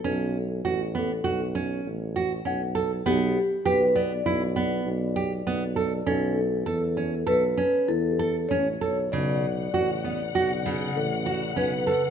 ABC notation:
X:1
M:5/4
L:1/16
Q:1/4=99
K:Amix
V:1 name="Vibraphone"
A16- A4 | G4 B2 d12- d2 | A8 B4 A4 c4 | d16 B4 |]
V:2 name="Celesta"
[Bc]6 A8- A2 f4- | f2 z16 z2 | z12 E G6- G- | G3 z8 z A8 |]
V:3 name="String section"
z16 z4 | z16 z4 | z16 z4 | [C,f]16- [C,f]4 |]
V:4 name="Nylon-string guitar"
C4 F2 B,2 F2 C4 F2 C2 A2 | B,4 G2 B,2 E2 B,4 G2 B,2 A2 | C4 A2 C2 A2 C4 A2 C2 A2 | C,4 F2 B,2 F2 C,4 F2 C2 A2 |]
V:5 name="Tuba" clef=bass
B,,,4 A,,,4 B,,,4 A,,,4 B,,,4 | B,,,2 z2 B,,,4 B,,,4 B,,,4 B,,,4 | B,,,4 E,,4 B,,,2 z2 E,,4 A,,,2 B,,,2 | B,,,4 A,,,4 B,,,4 A,,,4 B,,,2 z2 |]